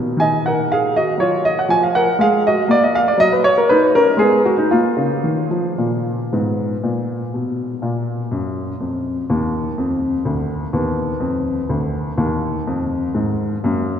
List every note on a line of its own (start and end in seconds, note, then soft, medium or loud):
0.00 0.17 B2 medium
0.17 0.91 D#3 medium
0.17 0.44 D#5 medium
0.17 0.41 G#5 medium
0.46 0.70 A#4 medium
0.46 0.67 F#5 medium
0.72 0.95 G#4 medium
0.72 0.96 F5 medium
0.96 1.20 F#4 medium
0.96 1.21 D#5 medium
1.18 1.54 F#3 medium
1.18 1.43 F4 medium
1.18 1.41 C#5 medium
1.45 1.57 D#5 medium
1.59 1.70 F#5 medium
1.69 2.04 F3 medium
1.69 1.82 G#5 medium
1.83 1.95 F5 medium
1.95 2.18 A#4 medium
1.95 2.15 F#5 medium
2.19 2.54 G#3 medium
2.19 2.43 G#4 medium
2.19 2.40 F5 medium
2.47 2.68 F#4 medium
2.47 2.66 D#5 medium
2.68 3.03 A#3 medium
2.68 2.81 D5 loud
2.83 2.94 D#5 medium
2.95 3.06 F5 loud
3.08 3.18 D5 medium
3.18 3.89 F#3 medium
3.18 3.30 D#5 loud
3.33 3.43 B4 medium
3.44 3.55 C#5 loud
3.58 3.68 A#4 medium
3.69 3.91 D#4 medium
3.69 3.89 B4 loud
3.95 4.17 C#4 medium
3.95 4.18 A#4 medium
4.17 4.54 G#3 medium
4.17 4.40 G#4 medium
4.21 4.43 B3 medium
4.45 4.57 F#4 medium
4.58 4.70 D#4 medium
4.71 6.04 A#3 medium
4.71 5.87 F4 medium
4.97 5.22 C#3 medium
5.24 5.49 D#3 medium
5.51 5.77 F3 medium
5.78 6.17 A#2 medium
6.33 6.73 G#2 medium
6.33 7.78 B3 soft
6.83 7.23 A#2 soft
7.34 7.72 B2 soft
7.82 8.21 A#2 medium
7.82 9.26 A#3 soft
8.31 8.71 F#2 soft
8.80 9.20 F2 soft
9.30 9.68 D#2 medium
9.30 10.69 A#3 soft
9.78 10.15 F2 medium
10.25 10.63 D2 medium
10.73 11.11 D#2 medium
10.73 12.15 B3 soft
11.20 11.59 F2 medium
11.69 12.09 D2 medium
12.18 12.57 D#2 medium
12.18 13.60 A#3 soft
12.67 13.06 F2 medium
13.15 13.54 G#2 medium
13.64 14.00 F#2 medium
13.64 14.00 A#3 soft